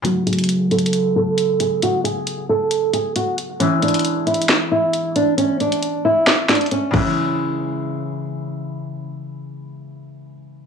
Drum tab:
CC |------------------------------------------------------------------------------------------------|------------------------------------------------------------------------------------------------|------------------------------------------------------------------------------------------------|------------------------------------------------------------------------------------x-----------|
HH |x-----------x--x--x--x--x-----------x---x---x---x-----------------------x-----------x-----------|x-----------x-----------x-----------------------x-----------x-----------x-----------x-----------|x-----------x--x--x--x--x-----------x---x---x---x-----------------------x-----------x-----------|x-----------x-----x-----x-----------------------x-----------x--x--x--x--x-----------------------|
CP |------------------------------------------------------------------------------------------------|------------------------------------------------------------------------------------------------|------------------------------------------------x-----------------------------------------------|------------------------------------------------x-----------x-----------------------------------|
SD |------------------------------------------------------------------------------------------------|------------------------------------------------------------------------------------------------|------------------------------------------------o-----------------------------------------------|------------------------------------------------o-----------o-----------------------------------|
BD |------------------------------------------------------------------------------------------------|------------------------------------------------------------------------------------------------|------------------------------------------------------------------------------------------------|------------------------------------------------------------------------------------o-----------|

CC |------------------------------------------------------------------------------------------------|------------------------------------------------------------------------------------------------|
HH |------------------------------------------------------------------------------------------------|------------------------------------------------------------------------------------------------|
CP |------------------------------------------------------------------------------------------------|------------------------------------------------------------------------------------------------|
SD |------------------------------------------------------------------------------------------------|------------------------------------------------------------------------------------------------|
BD |------------------------------------------------------------------------------------------------|------------------------------------------------------------------------------------------------|